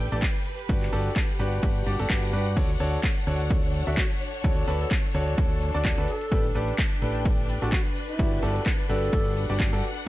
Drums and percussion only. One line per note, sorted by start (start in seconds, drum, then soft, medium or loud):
0.12 closed hi-hat medium
0.12 tambourine soft
0.12 shaker soft
0.22 kick loud
0.22 clap loud
0.22 closed hi-hat medium
0.22 ride medium
0.22 tambourine soft
0.22 shaker soft
0.35 tambourine soft
0.35 shaker soft
0.46 open hi-hat medium
0.46 tambourine medium
0.46 shaker medium
0.59 closed hi-hat medium
0.59 tambourine soft
0.59 shaker soft
0.69 kick loud
0.69 closed hi-hat medium
0.69 ride medium
0.69 tambourine medium
0.69 shaker soft
0.82 clap soft
0.82 closed hi-hat soft
0.82 tambourine soft
0.82 shaker soft
0.92 open hi-hat loud
0.92 tambourine loud
0.92 shaker medium
1.06 closed hi-hat medium
1.06 tambourine soft
1.06 shaker soft
1.16 kick loud
1.16 clap loud
1.16 closed hi-hat medium
1.16 ride medium
1.16 tambourine soft
1.16 shaker soft
1.29 closed hi-hat soft
1.29 tambourine soft
1.29 shaker soft
1.39 open hi-hat medium
1.39 tambourine medium
1.39 shaker medium
1.53 closed hi-hat medium
1.53 tambourine soft
1.53 shaker soft
1.63 kick loud
1.63 closed hi-hat medium
1.63 ride medium
1.63 tambourine medium
1.63 shaker soft
1.76 closed hi-hat soft
1.76 tambourine soft
1.76 shaker soft
1.86 open hi-hat loud
1.86 tambourine medium
1.86 shaker medium
2.00 closed hi-hat medium
2.00 tambourine soft
2.00 shaker soft
2.10 kick loud
2.10 clap loud
2.10 closed hi-hat medium
2.10 ride medium
2.10 tambourine soft
2.10 shaker soft
2.23 closed hi-hat soft
2.23 tambourine soft
2.23 shaker soft
2.33 open hi-hat medium
2.33 tambourine medium
2.33 shaker medium
2.46 closed hi-hat medium
2.46 tambourine soft
2.46 shaker soft
2.56 kick loud
2.56 closed hi-hat medium
2.56 crash medium
2.56 ride medium
2.56 tambourine medium
2.56 shaker soft
2.70 closed hi-hat soft
2.70 tambourine soft
2.70 shaker soft
2.80 open hi-hat loud
2.80 tambourine medium
2.80 shaker medium
2.93 closed hi-hat medium
2.93 tambourine soft
2.93 shaker soft
3.04 kick loud
3.04 clap loud
3.04 closed hi-hat medium
3.04 ride medium
3.04 tambourine medium
3.04 shaker soft
3.16 closed hi-hat soft
3.16 tambourine soft
3.16 shaker soft
3.27 open hi-hat loud
3.27 tambourine medium
3.27 shaker medium
3.40 closed hi-hat medium
3.40 tambourine soft
3.40 shaker soft
3.50 kick loud
3.50 closed hi-hat medium
3.50 ride medium
3.50 tambourine medium
3.50 shaker soft
3.64 tambourine soft
3.64 shaker soft
3.74 open hi-hat loud
3.74 tambourine medium
3.74 shaker medium
3.86 closed hi-hat medium
3.86 tambourine soft
3.86 shaker soft
3.97 kick loud
3.97 clap loud
3.97 closed hi-hat medium
3.97 ride medium
3.97 tambourine soft
3.97 shaker soft
4.11 tambourine soft
4.11 shaker soft
4.21 open hi-hat medium
4.21 tambourine medium
4.21 shaker medium
4.33 closed hi-hat medium
4.33 tambourine soft
4.33 shaker soft
4.44 kick loud
4.44 closed hi-hat medium
4.44 ride medium
4.44 tambourine medium
4.44 shaker soft
4.57 closed hi-hat soft
4.57 tambourine soft
4.57 shaker soft
4.68 open hi-hat loud
4.68 tambourine medium
4.68 shaker medium
4.80 closed hi-hat medium
4.80 tambourine soft
4.80 shaker soft
4.91 kick loud
4.91 clap loud
4.91 closed hi-hat medium
4.91 ride medium
4.91 tambourine medium
4.91 shaker soft
5.04 closed hi-hat soft
5.04 tambourine soft
5.04 shaker soft
5.14 open hi-hat loud
5.14 tambourine loud
5.14 shaker medium
5.28 closed hi-hat medium
5.28 tambourine soft
5.28 shaker soft
5.38 kick loud
5.38 closed hi-hat medium
5.38 ride medium
5.38 tambourine medium
5.38 shaker soft
5.52 tambourine soft
5.52 shaker soft
5.61 open hi-hat loud
5.61 tambourine medium
5.61 shaker medium
5.74 closed hi-hat medium
5.74 tambourine soft
5.74 shaker soft
5.84 kick loud
5.84 clap loud
5.84 closed hi-hat medium
5.84 ride medium
5.84 tambourine medium
5.84 shaker soft
5.98 closed hi-hat soft
5.98 tambourine soft
5.98 shaker soft
6.08 open hi-hat medium
6.08 tambourine medium
6.08 shaker medium
6.21 closed hi-hat medium
6.21 tambourine soft
6.21 shaker soft
6.32 kick loud
6.32 closed hi-hat medium
6.32 ride medium
6.32 tambourine medium
6.32 shaker soft
6.45 closed hi-hat soft
6.45 tambourine soft
6.45 shaker soft
6.54 open hi-hat loud
6.54 tambourine loud
6.54 shaker medium
6.68 closed hi-hat medium
6.68 tambourine soft
6.68 shaker soft
6.79 kick loud
6.79 clap loud
6.79 closed hi-hat medium
6.79 ride medium
6.79 tambourine medium
6.79 shaker soft
6.91 closed hi-hat soft
6.91 tambourine soft
6.91 shaker soft
7.02 open hi-hat loud
7.02 tambourine medium
7.02 shaker medium
7.15 closed hi-hat medium
7.15 tambourine soft
7.15 shaker soft
7.25 kick loud
7.25 closed hi-hat medium
7.25 ride medium
7.25 tambourine medium
7.25 shaker soft
7.38 tambourine soft
7.38 shaker soft
7.49 open hi-hat loud
7.49 tambourine medium
7.49 shaker medium
7.62 closed hi-hat medium
7.62 tambourine soft
7.62 shaker soft
7.72 kick loud
7.72 clap loud
7.72 closed hi-hat medium
7.72 ride medium
7.72 tambourine medium
7.72 shaker soft
7.86 tambourine soft
7.86 shaker soft
7.96 open hi-hat loud
7.96 tambourine medium
7.96 shaker medium
8.09 closed hi-hat medium
8.09 tambourine soft
8.09 shaker soft
8.19 kick loud
8.19 closed hi-hat medium
8.19 ride medium
8.19 tambourine medium
8.19 shaker soft
8.31 closed hi-hat soft
8.31 tambourine soft
8.31 shaker soft
8.43 open hi-hat loud
8.43 tambourine loud
8.43 shaker medium
8.55 closed hi-hat medium
8.55 tambourine soft
8.55 shaker soft
8.66 kick loud
8.66 clap loud
8.66 closed hi-hat medium
8.66 ride medium
8.66 tambourine medium
8.66 shaker soft
8.79 closed hi-hat soft
8.79 tambourine soft
8.79 shaker soft
8.89 open hi-hat loud
8.89 tambourine medium
8.89 shaker medium
9.03 closed hi-hat medium
9.03 tambourine soft
9.03 shaker soft
9.13 kick loud
9.13 closed hi-hat medium
9.13 ride medium
9.13 tambourine medium
9.13 shaker soft
9.26 tambourine soft
9.26 shaker soft
9.36 open hi-hat loud
9.36 tambourine medium
9.36 shaker medium
9.49 closed hi-hat soft
9.49 tambourine soft
9.49 shaker soft
9.60 kick loud
9.60 clap loud
9.60 closed hi-hat medium
9.60 ride medium
9.60 tambourine medium
9.60 shaker soft
9.73 closed hi-hat soft
9.73 tambourine soft
9.73 shaker soft
9.83 open hi-hat medium
9.83 tambourine medium
9.83 shaker medium
9.96 closed hi-hat medium
9.96 tambourine soft
9.96 shaker soft